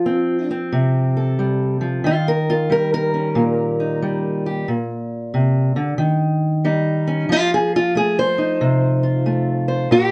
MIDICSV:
0, 0, Header, 1, 2, 480
1, 0, Start_track
1, 0, Tempo, 655738
1, 1504, Time_signature, 4, 2, 24, 8
1, 7403, End_track
2, 0, Start_track
2, 0, Title_t, "Steel-string acoustic guitar"
2, 0, Program_c, 0, 25
2, 0, Note_on_c, 0, 53, 69
2, 0, Note_on_c, 0, 65, 97
2, 42, Note_on_c, 0, 60, 60
2, 362, Note_off_c, 0, 60, 0
2, 371, Note_on_c, 0, 60, 50
2, 378, Note_off_c, 0, 65, 0
2, 530, Note_on_c, 0, 48, 66
2, 854, Note_on_c, 0, 69, 46
2, 1013, Note_off_c, 0, 53, 0
2, 1016, Note_on_c, 0, 55, 60
2, 1321, Note_off_c, 0, 55, 0
2, 1324, Note_on_c, 0, 53, 63
2, 1482, Note_off_c, 0, 60, 0
2, 1483, Note_off_c, 0, 69, 0
2, 1491, Note_off_c, 0, 48, 0
2, 1494, Note_on_c, 0, 51, 77
2, 1497, Note_off_c, 0, 53, 0
2, 1511, Note_on_c, 0, 65, 95
2, 1668, Note_off_c, 0, 65, 0
2, 1670, Note_on_c, 0, 70, 79
2, 1827, Note_off_c, 0, 70, 0
2, 1827, Note_on_c, 0, 65, 79
2, 1974, Note_on_c, 0, 55, 65
2, 1986, Note_off_c, 0, 65, 0
2, 1991, Note_on_c, 0, 70, 93
2, 2142, Note_off_c, 0, 70, 0
2, 2151, Note_on_c, 0, 70, 101
2, 2297, Note_on_c, 0, 61, 46
2, 2453, Note_on_c, 0, 46, 73
2, 2781, Note_on_c, 0, 63, 48
2, 2937, Note_off_c, 0, 55, 0
2, 2946, Note_on_c, 0, 55, 63
2, 3110, Note_off_c, 0, 70, 0
2, 3267, Note_on_c, 0, 67, 52
2, 3401, Note_off_c, 0, 46, 0
2, 3403, Note_off_c, 0, 51, 0
2, 3406, Note_off_c, 0, 61, 0
2, 3407, Note_off_c, 0, 55, 0
2, 3408, Note_off_c, 0, 63, 0
2, 3426, Note_on_c, 0, 46, 73
2, 3430, Note_off_c, 0, 67, 0
2, 3908, Note_on_c, 0, 48, 63
2, 4214, Note_off_c, 0, 48, 0
2, 4217, Note_on_c, 0, 50, 69
2, 4367, Note_off_c, 0, 46, 0
2, 4374, Note_off_c, 0, 50, 0
2, 4377, Note_on_c, 0, 51, 82
2, 4864, Note_on_c, 0, 55, 62
2, 4867, Note_on_c, 0, 63, 56
2, 5179, Note_on_c, 0, 61, 62
2, 5320, Note_off_c, 0, 51, 0
2, 5324, Note_off_c, 0, 55, 0
2, 5325, Note_off_c, 0, 61, 0
2, 5326, Note_off_c, 0, 63, 0
2, 5337, Note_on_c, 0, 53, 79
2, 5358, Note_on_c, 0, 65, 107
2, 5511, Note_off_c, 0, 65, 0
2, 5519, Note_on_c, 0, 68, 91
2, 5671, Note_off_c, 0, 68, 0
2, 5680, Note_on_c, 0, 65, 91
2, 5821, Note_on_c, 0, 57, 62
2, 5831, Note_off_c, 0, 65, 0
2, 5834, Note_on_c, 0, 68, 92
2, 5988, Note_off_c, 0, 68, 0
2, 5994, Note_on_c, 0, 72, 99
2, 6135, Note_on_c, 0, 63, 47
2, 6302, Note_on_c, 0, 48, 73
2, 6611, Note_on_c, 0, 65, 47
2, 6769, Note_off_c, 0, 57, 0
2, 6778, Note_on_c, 0, 57, 59
2, 6944, Note_off_c, 0, 72, 0
2, 7087, Note_on_c, 0, 72, 50
2, 7233, Note_off_c, 0, 53, 0
2, 7234, Note_off_c, 0, 72, 0
2, 7235, Note_off_c, 0, 65, 0
2, 7236, Note_off_c, 0, 57, 0
2, 7236, Note_off_c, 0, 63, 0
2, 7237, Note_off_c, 0, 48, 0
2, 7254, Note_on_c, 0, 46, 78
2, 7262, Note_on_c, 0, 67, 103
2, 7403, Note_off_c, 0, 46, 0
2, 7403, Note_off_c, 0, 67, 0
2, 7403, End_track
0, 0, End_of_file